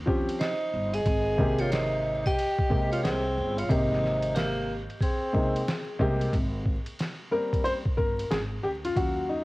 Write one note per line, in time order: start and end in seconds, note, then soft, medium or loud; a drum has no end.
0.00 0.24 D#2 loud
0.06 0.48 F3 medium
0.06 0.48 C4 medium
0.06 0.48 C#4 medium
0.06 0.49 G4 medium
0.06 kick medium
0.29 ride medium
0.39 0.97 D#4 loud
0.39 0.90 C5 medium
0.39 snare loud
0.39 hi-hat pedal soft
0.39 ride medium
0.73 0.98 G1 medium
0.94 1.62 G#4 loud
0.94 1.60 D#5 medium
0.94 ride medium
1.06 2.22 G#1 loud
1.06 kick loud
1.06 ride medium
1.38 2.32 C3 medium
1.38 2.33 G#3 medium
1.38 2.33 A#3 medium
1.38 2.34 G4 medium
1.38 kick medium
1.59 1.72 F4 medium
1.59 1.71 C#5 medium
1.59 ride medium
1.72 2.23 D#4 loud
1.72 2.22 C5 medium
1.72 snare loud
1.72 hi-hat pedal medium
1.72 ride medium
2.26 2.88 G4 loud
2.26 2.88 D#5 medium
2.26 kick medium
2.26 ride medium
2.39 ride medium
2.59 kick medium
2.70 3.20 C3 medium
2.70 3.20 G#3 medium
2.70 3.21 A#3 medium
2.70 3.21 G4 medium
2.70 kick medium
2.92 3.03 F4 loud
2.92 3.03 C#5 medium
2.92 ride medium
3.03 3.39 C2 loud
3.03 3.60 C4 loud
3.03 3.54 G#4 medium
3.03 snare loud
3.03 hi-hat pedal soft
3.03 ride medium
3.38 3.62 G1 medium
3.58 3.72 F4 medium
3.58 3.70 C#5 medium
3.58 ride medium
3.69 4.86 G#1 loud
3.69 4.63 C3 medium
3.69 4.63 G#3 medium
3.69 4.64 A#3 medium
3.69 4.37 D#4 loud
3.69 4.64 G4 medium
3.69 4.35 C5 medium
3.69 kick loud
3.69 ride medium
3.92 snare soft
4.04 snare soft
4.22 ride medium
4.35 4.76 A#3 medium
4.35 4.76 G4 medium
4.35 snare loud
4.35 hi-hat pedal medium
4.35 ride medium
4.90 ride medium
5.01 5.97 C4 medium
5.01 5.96 G#4 medium
5.01 kick loud
5.01 ride medium
5.33 5.59 C3 medium
5.33 5.60 G#3 medium
5.33 5.60 A#3 medium
5.33 5.61 D#4 medium
5.33 kick medium
5.56 ride medium
5.68 snare loud
5.68 hi-hat pedal soft
5.68 ride medium
5.99 6.25 C2 medium
5.99 6.33 C3 medium
5.99 6.33 G#3 medium
5.99 6.33 A#3 medium
5.99 6.34 G4 loud
5.99 kick medium
6.21 ride medium
6.33 6.74 G#1 loud
6.33 kick loud
6.33 ride medium
6.66 kick medium
6.86 ride medium
6.99 snare loud
6.99 hi-hat pedal soft
6.99 ride medium
7.31 7.79 G3 medium
7.31 7.79 A#3 soft
7.31 7.80 C4 medium
7.31 7.66 A#4 loud
7.53 kick medium
7.53 ride medium
7.64 7.72 C5 loud
7.64 ride medium
7.85 muted upright bass stroke soft
7.85 kick medium
7.97 8.23 G1 medium
7.97 8.31 A#4 medium
7.97 kick medium
8.19 ride medium
8.31 8.56 G#1 medium
8.31 8.38 G#4 medium
8.31 snare loud
8.31 hi-hat pedal soft
8.31 ride medium
8.63 8.89 D2 medium
8.63 8.68 G4 medium
8.85 8.95 F4 medium
8.85 ride medium
8.95 9.38 D#2 loud
8.95 9.44 F#3 medium
8.95 9.44 C#4 soft
8.95 9.44 F4 medium
8.95 9.31 F#4 medium
8.95 kick loud
8.95 ride medium
9.29 9.44 D#4 medium